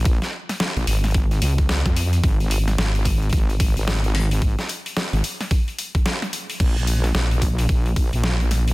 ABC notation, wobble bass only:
X:1
M:4/4
L:1/16
Q:"Swing 16ths" 1/4=110
K:Bbm
V:1 name="Wobble bass" clef=bass
B,,, z4 B,,, A,,,4 D,,3 F,,3 | A,,,4 A,,,4 A,,,3 A,,,4- A,,,- | A,,, z4 A,,, z8 z2 | B,,,4 B,,,4 B,,,3 B,,,4- B,,, |]